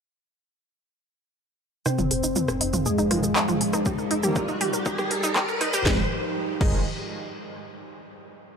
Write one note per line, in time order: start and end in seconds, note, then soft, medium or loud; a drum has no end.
1.86 5.91 F2 medium
1.86 2.86 C3 loud
1.86 2.87 C4 loud
1.86 5.82 D#4 medium
1.86 1.95 D#4 loud
1.86 3.84 G#4 medium
1.86 3.84 C5 medium
1.86 3.84 F5 medium
1.86 cross-stick soft
1.86 riser medium
1.86 shaker medium
1.98 2.09 F1 medium
1.98 2.08 F4 loud
1.98 mid tom medium
1.98 shaker soft
2.11 2.22 F1 loud
2.11 2.16 G#4 medium
2.11 open hi-hat loud
2.23 2.34 F1 medium
2.23 2.33 D#4 loud
2.23 shaker medium
2.36 2.45 F4 loud
2.36 mid tom medium
2.36 shaker medium
2.48 2.59 F1 medium
2.48 2.54 G#4 medium
2.48 cross-stick medium
2.48 shaker soft
2.61 2.72 F1 loud
2.61 2.70 D#4 loud
2.61 open hi-hat medium
2.73 2.84 F1 medium
2.73 2.83 F4 medium
2.73 mid tom medium
2.73 shaker medium
2.86 4.26 G#2 medium
2.86 4.26 G#3 loud
2.86 2.91 G#4 medium
2.86 shaker medium
2.98 3.09 F1 medium
2.98 3.08 D#4 loud
2.98 shaker soft
3.11 3.22 F1 loud
3.11 3.19 D#3 medium
3.11 3.19 F3 medium
3.11 3.19 G#3 loud
3.11 3.20 F4 loud
3.11 cross-stick soft
3.11 mid tom medium
3.11 open hi-hat loud
3.23 3.34 F1 medium
3.23 3.29 G#4 medium
3.23 shaker medium
3.36 3.45 D#4 loud
3.36 clap loud
3.36 shaker medium
3.48 3.59 F1 medium
3.48 3.58 F4 loud
3.48 mid tom medium
3.48 shaker soft
3.61 3.72 F1 loud
3.61 3.66 G#4 medium
3.61 open hi-hat medium
3.73 3.84 F1 medium
3.73 3.83 D#4 loud
3.73 cross-stick soft
3.73 shaker medium
3.86 3.95 G4 loud
3.86 5.84 G4 medium
3.86 5.84 A#4 medium
3.86 5.84 G5 medium
3.86 kick loud
3.86 mid tom medium
3.86 shaker medium
3.98 4.09 F1 medium
3.98 4.04 A#4 medium
3.98 shaker soft
4.11 4.22 F1 medium
4.11 4.20 D#4 loud
4.11 open hi-hat loud
4.23 4.34 F1 medium
4.23 4.37 D#3 loud
4.23 4.37 G3 medium
4.23 4.37 A#3 loud
4.23 4.33 G4 loud
4.23 mid tom medium
4.23 shaker medium
4.36 5.76 G2 medium
4.36 5.76 G3 loud
4.36 4.41 A#4 medium
4.36 kick loud
4.36 cross-stick medium
4.36 shaker medium
4.48 4.59 F1 medium
4.48 4.58 D#4 loud
4.48 shaker soft
4.61 4.72 F1 loud
4.61 4.70 G4 loud
4.61 mid tom medium
4.61 open hi-hat loud
4.73 4.84 F1 medium
4.73 4.79 A#4 medium
4.73 shaker medium
4.86 4.95 D#4 loud
4.86 kick loud
4.86 shaker medium
4.98 5.09 F1 medium
4.98 5.08 G4 loud
4.98 cross-stick soft
4.98 mid tom medium
4.98 shaker soft
5.11 5.21 F1 loud
5.11 5.16 A#4 medium
5.11 open hi-hat loud
5.23 5.34 F1 medium
5.23 5.33 D#4 loud
5.23 shaker medium
5.36 5.45 G4 loud
5.36 kick loud
5.36 clap loud
5.36 mid tom medium
5.36 shaker medium
5.48 5.59 F1 medium
5.48 5.54 A#4 medium
5.48 shaker soft
5.61 5.71 F1 loud
5.61 5.70 D#4 loud
5.61 cross-stick medium
5.61 open hi-hat loud
5.73 5.84 F1 medium
5.73 5.83 G4 loud
5.73 mid tom medium
5.73 shaker medium
5.86 6.00 F1 loud
5.86 6.00 G#2 medium
5.86 6.00 D#3 medium
5.86 6.00 F3 medium
5.86 6.00 G#3 loud
5.86 6.00 G#3 medium
5.86 6.00 D#4 medium
5.86 kick loud
5.86 snare medium
6.61 6.84 F1 loud
6.61 6.79 G#2 loud
6.61 6.80 D#3 medium
6.61 6.80 F3 medium
6.61 6.79 G#3 loud
6.61 6.80 G#3 loud
6.61 6.84 D#4 medium
6.61 kick loud
6.61 crash medium